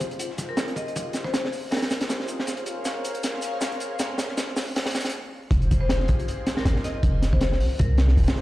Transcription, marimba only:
0.49 A#4
0.76 D#5
0.87 D#5
1.25 C5
1.71 A#4
5.81 C5
6.57 A#4
6.84 D#5
6.95 D#5
7.33 C5
7.79 A#4

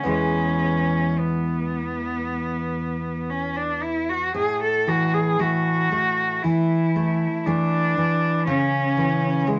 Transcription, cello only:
0.09 C#4
1.19 B3
3.30 C#4
3.56 D4
3.82 E4
4.09 F#4
4.36 G#4
4.63 A4
4.88 F#4
5.13 G#4
5.40 F#4
6.43 E4
7.46 D4
8.48 C#4
9.46 G#3

